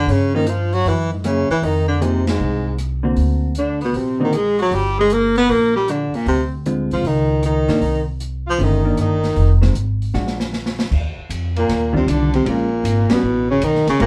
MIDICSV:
0, 0, Header, 1, 7, 480
1, 0, Start_track
1, 0, Tempo, 386847
1, 101, Time_signature, 4, 2, 24, 8
1, 17452, End_track
2, 0, Start_track
2, 0, Title_t, "Tenor saxophone"
2, 0, Program_c, 0, 66
2, 0, Note_on_c, 0, 62, 72
2, 120, Note_on_c, 0, 61, 62
2, 138, Note_off_c, 0, 62, 0
2, 431, Note_off_c, 0, 61, 0
2, 441, Note_on_c, 0, 63, 64
2, 617, Note_on_c, 0, 65, 62
2, 635, Note_off_c, 0, 63, 0
2, 910, Note_on_c, 0, 66, 67
2, 928, Note_off_c, 0, 65, 0
2, 1081, Note_on_c, 0, 64, 61
2, 1100, Note_off_c, 0, 66, 0
2, 1392, Note_off_c, 0, 64, 0
2, 1400, Note_on_c, 0, 56, 40
2, 1564, Note_on_c, 0, 61, 59
2, 1583, Note_off_c, 0, 56, 0
2, 1873, Note_off_c, 0, 61, 0
2, 1896, Note_on_c, 0, 64, 77
2, 2046, Note_on_c, 0, 63, 64
2, 2065, Note_off_c, 0, 64, 0
2, 2325, Note_off_c, 0, 63, 0
2, 2332, Note_on_c, 0, 62, 62
2, 2506, Note_on_c, 0, 60, 64
2, 2525, Note_off_c, 0, 62, 0
2, 2824, Note_off_c, 0, 60, 0
2, 2840, Note_on_c, 0, 56, 48
2, 3425, Note_off_c, 0, 56, 0
2, 4447, Note_on_c, 0, 62, 68
2, 4725, Note_off_c, 0, 62, 0
2, 4732, Note_on_c, 0, 59, 62
2, 4909, Note_on_c, 0, 60, 58
2, 4928, Note_off_c, 0, 59, 0
2, 5209, Note_off_c, 0, 60, 0
2, 5216, Note_on_c, 0, 63, 67
2, 5377, Note_on_c, 0, 68, 74
2, 5395, Note_off_c, 0, 63, 0
2, 5682, Note_off_c, 0, 68, 0
2, 5690, Note_on_c, 0, 66, 64
2, 5871, Note_on_c, 0, 67, 59
2, 5890, Note_off_c, 0, 66, 0
2, 6186, Note_off_c, 0, 67, 0
2, 6193, Note_on_c, 0, 68, 72
2, 6377, Note_on_c, 0, 70, 68
2, 6395, Note_off_c, 0, 68, 0
2, 6678, Note_off_c, 0, 70, 0
2, 6691, Note_on_c, 0, 71, 73
2, 6850, Note_on_c, 0, 70, 69
2, 6868, Note_off_c, 0, 71, 0
2, 7136, Note_off_c, 0, 70, 0
2, 7143, Note_on_c, 0, 67, 78
2, 7333, Note_on_c, 0, 62, 64
2, 7352, Note_off_c, 0, 67, 0
2, 7638, Note_on_c, 0, 58, 56
2, 7657, Note_off_c, 0, 62, 0
2, 7787, Note_off_c, 0, 58, 0
2, 7808, Note_on_c, 0, 60, 59
2, 8092, Note_off_c, 0, 60, 0
2, 8612, Note_on_c, 0, 65, 61
2, 8774, Note_on_c, 0, 63, 62
2, 8793, Note_off_c, 0, 65, 0
2, 9235, Note_off_c, 0, 63, 0
2, 9250, Note_on_c, 0, 63, 61
2, 9984, Note_off_c, 0, 63, 0
2, 10508, Note_on_c, 0, 65, 63
2, 10714, Note_on_c, 0, 63, 58
2, 10733, Note_off_c, 0, 65, 0
2, 11165, Note_off_c, 0, 63, 0
2, 11177, Note_on_c, 0, 63, 60
2, 11907, Note_off_c, 0, 63, 0
2, 14354, Note_on_c, 0, 58, 59
2, 14792, Note_off_c, 0, 58, 0
2, 14842, Note_on_c, 0, 60, 70
2, 14991, Note_on_c, 0, 62, 71
2, 15009, Note_off_c, 0, 60, 0
2, 15304, Note_off_c, 0, 62, 0
2, 15312, Note_on_c, 0, 60, 66
2, 15490, Note_on_c, 0, 58, 69
2, 15509, Note_off_c, 0, 60, 0
2, 16260, Note_off_c, 0, 58, 0
2, 16268, Note_on_c, 0, 59, 65
2, 16710, Note_off_c, 0, 59, 0
2, 16749, Note_on_c, 0, 61, 71
2, 16920, Note_on_c, 0, 63, 77
2, 16938, Note_off_c, 0, 61, 0
2, 17224, Note_off_c, 0, 63, 0
2, 17231, Note_on_c, 0, 61, 71
2, 17374, Note_off_c, 0, 61, 0
2, 17386, Note_on_c, 0, 58, 66
2, 17452, Note_off_c, 0, 58, 0
2, 17452, End_track
3, 0, Start_track
3, 0, Title_t, "Hollow-body jazz guitar"
3, 0, Program_c, 1, 26
3, 425, Note_on_c, 1, 53, 61
3, 430, Note_on_c, 1, 61, 69
3, 432, Note_on_c, 1, 58, 56
3, 567, Note_off_c, 1, 53, 0
3, 569, Note_off_c, 1, 61, 0
3, 570, Note_off_c, 1, 58, 0
3, 1543, Note_on_c, 1, 54, 51
3, 1551, Note_on_c, 1, 58, 54
3, 1557, Note_on_c, 1, 64, 55
3, 1562, Note_on_c, 1, 68, 58
3, 1831, Note_off_c, 1, 54, 0
3, 1835, Note_off_c, 1, 58, 0
3, 1838, Note_off_c, 1, 64, 0
3, 1840, Note_off_c, 1, 68, 0
3, 2497, Note_on_c, 1, 58, 56
3, 2498, Note_on_c, 1, 53, 50
3, 2507, Note_on_c, 1, 63, 58
3, 2507, Note_on_c, 1, 68, 59
3, 2787, Note_off_c, 1, 58, 0
3, 2788, Note_off_c, 1, 53, 0
3, 2792, Note_off_c, 1, 63, 0
3, 2793, Note_off_c, 1, 68, 0
3, 3762, Note_on_c, 1, 50, 55
3, 3771, Note_on_c, 1, 58, 51
3, 3782, Note_on_c, 1, 66, 59
3, 3784, Note_on_c, 1, 60, 62
3, 4378, Note_off_c, 1, 50, 0
3, 4383, Note_off_c, 1, 58, 0
3, 4389, Note_off_c, 1, 60, 0
3, 4389, Note_off_c, 1, 66, 0
3, 5210, Note_on_c, 1, 50, 53
3, 5219, Note_on_c, 1, 60, 57
3, 5221, Note_on_c, 1, 58, 54
3, 5232, Note_on_c, 1, 66, 53
3, 5358, Note_off_c, 1, 50, 0
3, 5362, Note_off_c, 1, 60, 0
3, 5363, Note_off_c, 1, 58, 0
3, 5369, Note_off_c, 1, 66, 0
3, 8266, Note_on_c, 1, 50, 56
3, 8268, Note_on_c, 1, 56, 60
3, 8268, Note_on_c, 1, 65, 58
3, 8270, Note_on_c, 1, 60, 56
3, 8741, Note_off_c, 1, 50, 0
3, 8742, Note_off_c, 1, 56, 0
3, 8742, Note_off_c, 1, 65, 0
3, 8743, Note_off_c, 1, 60, 0
3, 9535, Note_on_c, 1, 51, 67
3, 9549, Note_on_c, 1, 58, 67
3, 9554, Note_on_c, 1, 62, 67
3, 9679, Note_off_c, 1, 51, 0
3, 9686, Note_off_c, 1, 58, 0
3, 9689, Note_off_c, 1, 62, 0
3, 10651, Note_on_c, 1, 50, 52
3, 10662, Note_on_c, 1, 57, 62
3, 10672, Note_on_c, 1, 61, 63
3, 10942, Note_off_c, 1, 50, 0
3, 10947, Note_off_c, 1, 57, 0
3, 10952, Note_off_c, 1, 61, 0
3, 10971, Note_on_c, 1, 51, 56
3, 10982, Note_on_c, 1, 58, 56
3, 10991, Note_on_c, 1, 62, 59
3, 11390, Note_off_c, 1, 51, 0
3, 11395, Note_off_c, 1, 58, 0
3, 11399, Note_off_c, 1, 62, 0
3, 11930, Note_on_c, 1, 51, 57
3, 11941, Note_on_c, 1, 60, 63
3, 11943, Note_on_c, 1, 56, 59
3, 12076, Note_off_c, 1, 51, 0
3, 12082, Note_off_c, 1, 60, 0
3, 12083, Note_off_c, 1, 56, 0
3, 12586, Note_on_c, 1, 62, 47
3, 12587, Note_on_c, 1, 56, 50
3, 12588, Note_on_c, 1, 66, 54
3, 12869, Note_off_c, 1, 62, 0
3, 12870, Note_off_c, 1, 56, 0
3, 12870, Note_off_c, 1, 66, 0
3, 14802, Note_on_c, 1, 51, 56
3, 14808, Note_on_c, 1, 55, 52
3, 14809, Note_on_c, 1, 62, 61
3, 14820, Note_on_c, 1, 65, 58
3, 15417, Note_off_c, 1, 51, 0
3, 15420, Note_off_c, 1, 55, 0
3, 15420, Note_off_c, 1, 62, 0
3, 15426, Note_off_c, 1, 65, 0
3, 15445, Note_on_c, 1, 56, 52
3, 15454, Note_on_c, 1, 61, 58
3, 15462, Note_on_c, 1, 65, 55
3, 15739, Note_off_c, 1, 56, 0
3, 15744, Note_off_c, 1, 61, 0
3, 15748, Note_off_c, 1, 65, 0
3, 16252, Note_on_c, 1, 55, 72
3, 16256, Note_on_c, 1, 59, 69
3, 16262, Note_on_c, 1, 61, 69
3, 16398, Note_off_c, 1, 55, 0
3, 16400, Note_off_c, 1, 59, 0
3, 16403, Note_off_c, 1, 61, 0
3, 17365, Note_on_c, 1, 56, 56
3, 17374, Note_on_c, 1, 60, 58
3, 17379, Note_on_c, 1, 70, 68
3, 17383, Note_on_c, 1, 67, 62
3, 17452, Note_off_c, 1, 56, 0
3, 17452, Note_off_c, 1, 60, 0
3, 17452, Note_off_c, 1, 67, 0
3, 17452, Note_off_c, 1, 70, 0
3, 17452, End_track
4, 0, Start_track
4, 0, Title_t, "Baritone saxophone"
4, 0, Program_c, 2, 67
4, 0, Note_on_c, 2, 50, 87
4, 132, Note_on_c, 2, 49, 73
4, 151, Note_off_c, 2, 50, 0
4, 431, Note_off_c, 2, 49, 0
4, 438, Note_on_c, 2, 51, 78
4, 585, Note_on_c, 2, 53, 73
4, 604, Note_off_c, 2, 51, 0
4, 912, Note_on_c, 2, 54, 89
4, 931, Note_off_c, 2, 53, 0
4, 1098, Note_on_c, 2, 52, 76
4, 1116, Note_off_c, 2, 54, 0
4, 1391, Note_off_c, 2, 52, 0
4, 1399, Note_on_c, 2, 44, 44
4, 1570, Note_on_c, 2, 49, 66
4, 1589, Note_off_c, 2, 44, 0
4, 1864, Note_off_c, 2, 49, 0
4, 1871, Note_on_c, 2, 52, 88
4, 2037, Note_on_c, 2, 51, 73
4, 2056, Note_off_c, 2, 52, 0
4, 2324, Note_off_c, 2, 51, 0
4, 2332, Note_on_c, 2, 50, 78
4, 2496, Note_on_c, 2, 48, 71
4, 2514, Note_off_c, 2, 50, 0
4, 2819, Note_off_c, 2, 48, 0
4, 2825, Note_on_c, 2, 44, 69
4, 3418, Note_off_c, 2, 44, 0
4, 4445, Note_on_c, 2, 50, 67
4, 4732, Note_off_c, 2, 50, 0
4, 4776, Note_on_c, 2, 47, 74
4, 4921, Note_on_c, 2, 48, 66
4, 4939, Note_off_c, 2, 47, 0
4, 5231, Note_off_c, 2, 48, 0
4, 5267, Note_on_c, 2, 51, 77
4, 5422, Note_on_c, 2, 56, 83
4, 5441, Note_off_c, 2, 51, 0
4, 5721, Note_off_c, 2, 56, 0
4, 5730, Note_on_c, 2, 54, 81
4, 5896, Note_on_c, 2, 55, 74
4, 5914, Note_off_c, 2, 54, 0
4, 6198, Note_off_c, 2, 55, 0
4, 6208, Note_on_c, 2, 56, 90
4, 6368, Note_on_c, 2, 58, 79
4, 6387, Note_off_c, 2, 56, 0
4, 6663, Note_off_c, 2, 58, 0
4, 6670, Note_on_c, 2, 59, 100
4, 6826, Note_on_c, 2, 58, 87
4, 6845, Note_off_c, 2, 59, 0
4, 7143, Note_off_c, 2, 58, 0
4, 7150, Note_on_c, 2, 55, 83
4, 7326, Note_on_c, 2, 50, 68
4, 7344, Note_off_c, 2, 55, 0
4, 7629, Note_on_c, 2, 46, 69
4, 7647, Note_off_c, 2, 50, 0
4, 7783, Note_off_c, 2, 46, 0
4, 7794, Note_on_c, 2, 48, 79
4, 7981, Note_off_c, 2, 48, 0
4, 8597, Note_on_c, 2, 53, 73
4, 8767, Note_on_c, 2, 51, 70
4, 8786, Note_off_c, 2, 53, 0
4, 9232, Note_off_c, 2, 51, 0
4, 9251, Note_on_c, 2, 51, 71
4, 9984, Note_off_c, 2, 51, 0
4, 10542, Note_on_c, 2, 53, 86
4, 10706, Note_on_c, 2, 51, 73
4, 10724, Note_off_c, 2, 53, 0
4, 11161, Note_off_c, 2, 51, 0
4, 11174, Note_on_c, 2, 51, 74
4, 11906, Note_off_c, 2, 51, 0
4, 14371, Note_on_c, 2, 46, 74
4, 14801, Note_off_c, 2, 46, 0
4, 14842, Note_on_c, 2, 48, 81
4, 15013, Note_on_c, 2, 50, 77
4, 15031, Note_off_c, 2, 48, 0
4, 15315, Note_off_c, 2, 50, 0
4, 15329, Note_on_c, 2, 48, 78
4, 15497, Note_on_c, 2, 46, 78
4, 15516, Note_off_c, 2, 48, 0
4, 16278, Note_off_c, 2, 46, 0
4, 16284, Note_on_c, 2, 47, 79
4, 16719, Note_off_c, 2, 47, 0
4, 16763, Note_on_c, 2, 49, 82
4, 16932, Note_on_c, 2, 51, 88
4, 16951, Note_off_c, 2, 49, 0
4, 17229, Note_off_c, 2, 51, 0
4, 17236, Note_on_c, 2, 49, 87
4, 17377, Note_off_c, 2, 49, 0
4, 17399, Note_on_c, 2, 46, 75
4, 17452, Note_off_c, 2, 46, 0
4, 17452, End_track
5, 0, Start_track
5, 0, Title_t, "Upright bass"
5, 0, Program_c, 3, 32
5, 90, Note_on_c, 3, 43, 80
5, 1007, Note_off_c, 3, 43, 0
5, 1058, Note_on_c, 3, 42, 79
5, 1811, Note_off_c, 3, 42, 0
5, 2014, Note_on_c, 3, 41, 78
5, 2929, Note_off_c, 3, 41, 0
5, 2971, Note_on_c, 3, 36, 79
5, 3887, Note_off_c, 3, 36, 0
5, 3926, Note_on_c, 3, 38, 78
5, 4844, Note_off_c, 3, 38, 0
5, 4883, Note_on_c, 3, 34, 78
5, 5802, Note_off_c, 3, 34, 0
5, 5845, Note_on_c, 3, 31, 76
5, 6763, Note_off_c, 3, 31, 0
5, 6805, Note_on_c, 3, 34, 81
5, 7562, Note_off_c, 3, 34, 0
5, 7768, Note_on_c, 3, 38, 81
5, 8523, Note_off_c, 3, 38, 0
5, 8567, Note_on_c, 3, 36, 60
5, 8708, Note_off_c, 3, 36, 0
5, 8716, Note_on_c, 3, 37, 79
5, 9477, Note_off_c, 3, 37, 0
5, 9529, Note_on_c, 3, 43, 68
5, 9677, Note_off_c, 3, 43, 0
5, 9684, Note_on_c, 3, 36, 78
5, 10601, Note_off_c, 3, 36, 0
5, 10655, Note_on_c, 3, 31, 81
5, 11101, Note_off_c, 3, 31, 0
5, 11145, Note_on_c, 3, 31, 64
5, 11587, Note_off_c, 3, 31, 0
5, 11618, Note_on_c, 3, 29, 84
5, 12063, Note_off_c, 3, 29, 0
5, 12096, Note_on_c, 3, 32, 69
5, 12542, Note_off_c, 3, 32, 0
5, 12580, Note_on_c, 3, 34, 79
5, 13490, Note_off_c, 3, 34, 0
5, 13543, Note_on_c, 3, 39, 80
5, 13838, Note_off_c, 3, 39, 0
5, 14014, Note_on_c, 3, 41, 80
5, 14480, Note_off_c, 3, 41, 0
5, 14497, Note_on_c, 3, 39, 78
5, 14962, Note_off_c, 3, 39, 0
5, 14969, Note_on_c, 3, 36, 76
5, 15438, Note_off_c, 3, 36, 0
5, 15452, Note_on_c, 3, 34, 85
5, 15920, Note_off_c, 3, 34, 0
5, 15927, Note_on_c, 3, 32, 85
5, 16230, Note_off_c, 3, 32, 0
5, 16413, Note_on_c, 3, 33, 82
5, 16881, Note_off_c, 3, 33, 0
5, 16895, Note_on_c, 3, 35, 85
5, 17196, Note_off_c, 3, 35, 0
5, 17374, Note_on_c, 3, 32, 85
5, 17452, Note_off_c, 3, 32, 0
5, 17452, End_track
6, 0, Start_track
6, 0, Title_t, "Muted upright bass strokes"
6, 1857, Note_on_c, 9, 29, 36
6, 1981, Note_off_c, 9, 29, 0
6, 7609, Note_on_c, 9, 29, 36
6, 7733, Note_off_c, 9, 29, 0
6, 13866, Note_on_c, 9, 29, 34
6, 13990, Note_off_c, 9, 29, 0
6, 16260, Note_on_c, 9, 29, 39
6, 16384, Note_off_c, 9, 29, 0
6, 17216, Note_on_c, 9, 29, 40
6, 17340, Note_off_c, 9, 29, 0
6, 17452, End_track
7, 0, Start_track
7, 0, Title_t, "Drums"
7, 107, Note_on_c, 9, 46, 44
7, 231, Note_off_c, 9, 46, 0
7, 578, Note_on_c, 9, 42, 50
7, 702, Note_off_c, 9, 42, 0
7, 900, Note_on_c, 9, 46, 33
7, 1024, Note_off_c, 9, 46, 0
7, 1062, Note_on_c, 9, 46, 40
7, 1186, Note_off_c, 9, 46, 0
7, 1540, Note_on_c, 9, 42, 49
7, 1541, Note_on_c, 9, 37, 54
7, 1664, Note_off_c, 9, 42, 0
7, 1665, Note_off_c, 9, 37, 0
7, 1868, Note_on_c, 9, 46, 35
7, 1992, Note_off_c, 9, 46, 0
7, 2024, Note_on_c, 9, 46, 44
7, 2148, Note_off_c, 9, 46, 0
7, 2503, Note_on_c, 9, 42, 50
7, 2627, Note_off_c, 9, 42, 0
7, 2819, Note_on_c, 9, 51, 59
7, 2820, Note_on_c, 9, 38, 71
7, 2943, Note_off_c, 9, 51, 0
7, 2944, Note_off_c, 9, 38, 0
7, 3455, Note_on_c, 9, 42, 47
7, 3456, Note_on_c, 9, 37, 52
7, 3579, Note_off_c, 9, 42, 0
7, 3580, Note_off_c, 9, 37, 0
7, 3927, Note_on_c, 9, 46, 42
7, 4051, Note_off_c, 9, 46, 0
7, 4403, Note_on_c, 9, 42, 51
7, 4528, Note_off_c, 9, 42, 0
7, 4727, Note_on_c, 9, 46, 32
7, 4851, Note_off_c, 9, 46, 0
7, 4889, Note_on_c, 9, 46, 40
7, 5014, Note_off_c, 9, 46, 0
7, 5368, Note_on_c, 9, 42, 43
7, 5370, Note_on_c, 9, 37, 54
7, 5493, Note_off_c, 9, 42, 0
7, 5494, Note_off_c, 9, 37, 0
7, 5689, Note_on_c, 9, 46, 34
7, 5814, Note_off_c, 9, 46, 0
7, 5848, Note_on_c, 9, 46, 44
7, 5972, Note_off_c, 9, 46, 0
7, 6326, Note_on_c, 9, 42, 51
7, 6451, Note_off_c, 9, 42, 0
7, 6648, Note_on_c, 9, 46, 34
7, 6772, Note_off_c, 9, 46, 0
7, 6814, Note_on_c, 9, 46, 44
7, 6938, Note_off_c, 9, 46, 0
7, 7295, Note_on_c, 9, 42, 46
7, 7297, Note_on_c, 9, 37, 54
7, 7419, Note_off_c, 9, 42, 0
7, 7421, Note_off_c, 9, 37, 0
7, 7617, Note_on_c, 9, 46, 36
7, 7741, Note_off_c, 9, 46, 0
7, 7769, Note_on_c, 9, 46, 43
7, 7893, Note_off_c, 9, 46, 0
7, 8259, Note_on_c, 9, 42, 48
7, 8383, Note_off_c, 9, 42, 0
7, 8575, Note_on_c, 9, 46, 34
7, 8700, Note_off_c, 9, 46, 0
7, 8743, Note_on_c, 9, 46, 43
7, 8867, Note_off_c, 9, 46, 0
7, 9215, Note_on_c, 9, 42, 46
7, 9217, Note_on_c, 9, 37, 55
7, 9339, Note_off_c, 9, 42, 0
7, 9341, Note_off_c, 9, 37, 0
7, 9535, Note_on_c, 9, 46, 35
7, 9536, Note_on_c, 9, 38, 49
7, 9659, Note_off_c, 9, 46, 0
7, 9660, Note_off_c, 9, 38, 0
7, 9697, Note_on_c, 9, 46, 46
7, 9821, Note_off_c, 9, 46, 0
7, 10178, Note_on_c, 9, 42, 52
7, 10302, Note_off_c, 9, 42, 0
7, 10664, Note_on_c, 9, 46, 40
7, 10788, Note_off_c, 9, 46, 0
7, 11134, Note_on_c, 9, 42, 48
7, 11135, Note_on_c, 9, 37, 55
7, 11258, Note_off_c, 9, 42, 0
7, 11260, Note_off_c, 9, 37, 0
7, 11459, Note_on_c, 9, 46, 35
7, 11460, Note_on_c, 9, 38, 36
7, 11583, Note_off_c, 9, 46, 0
7, 11584, Note_off_c, 9, 38, 0
7, 11617, Note_on_c, 9, 46, 42
7, 11741, Note_off_c, 9, 46, 0
7, 11940, Note_on_c, 9, 38, 48
7, 12064, Note_off_c, 9, 38, 0
7, 12101, Note_on_c, 9, 42, 54
7, 12225, Note_off_c, 9, 42, 0
7, 12433, Note_on_c, 9, 46, 33
7, 12557, Note_off_c, 9, 46, 0
7, 12580, Note_on_c, 9, 38, 41
7, 12705, Note_off_c, 9, 38, 0
7, 12746, Note_on_c, 9, 38, 46
7, 12870, Note_off_c, 9, 38, 0
7, 12904, Note_on_c, 9, 38, 62
7, 13028, Note_off_c, 9, 38, 0
7, 13069, Note_on_c, 9, 38, 56
7, 13193, Note_off_c, 9, 38, 0
7, 13228, Note_on_c, 9, 38, 60
7, 13352, Note_off_c, 9, 38, 0
7, 13387, Note_on_c, 9, 38, 77
7, 13511, Note_off_c, 9, 38, 0
7, 13543, Note_on_c, 9, 36, 69
7, 13546, Note_on_c, 9, 49, 72
7, 13667, Note_off_c, 9, 36, 0
7, 13670, Note_off_c, 9, 49, 0
7, 14026, Note_on_c, 9, 44, 55
7, 14026, Note_on_c, 9, 51, 67
7, 14150, Note_off_c, 9, 44, 0
7, 14150, Note_off_c, 9, 51, 0
7, 14349, Note_on_c, 9, 51, 44
7, 14473, Note_off_c, 9, 51, 0
7, 14511, Note_on_c, 9, 51, 60
7, 14512, Note_on_c, 9, 38, 37
7, 14635, Note_off_c, 9, 51, 0
7, 14636, Note_off_c, 9, 38, 0
7, 14822, Note_on_c, 9, 36, 53
7, 14946, Note_off_c, 9, 36, 0
7, 14989, Note_on_c, 9, 44, 58
7, 14989, Note_on_c, 9, 51, 61
7, 15114, Note_off_c, 9, 44, 0
7, 15114, Note_off_c, 9, 51, 0
7, 15307, Note_on_c, 9, 51, 44
7, 15431, Note_off_c, 9, 51, 0
7, 15463, Note_on_c, 9, 51, 63
7, 15587, Note_off_c, 9, 51, 0
7, 15943, Note_on_c, 9, 44, 66
7, 15943, Note_on_c, 9, 51, 70
7, 16067, Note_off_c, 9, 44, 0
7, 16067, Note_off_c, 9, 51, 0
7, 16249, Note_on_c, 9, 51, 58
7, 16250, Note_on_c, 9, 38, 74
7, 16373, Note_off_c, 9, 51, 0
7, 16374, Note_off_c, 9, 38, 0
7, 16894, Note_on_c, 9, 44, 47
7, 16894, Note_on_c, 9, 51, 68
7, 17018, Note_off_c, 9, 44, 0
7, 17018, Note_off_c, 9, 51, 0
7, 17060, Note_on_c, 9, 38, 27
7, 17184, Note_off_c, 9, 38, 0
7, 17208, Note_on_c, 9, 38, 42
7, 17214, Note_on_c, 9, 51, 45
7, 17332, Note_off_c, 9, 38, 0
7, 17338, Note_off_c, 9, 51, 0
7, 17370, Note_on_c, 9, 51, 63
7, 17452, Note_off_c, 9, 51, 0
7, 17452, End_track
0, 0, End_of_file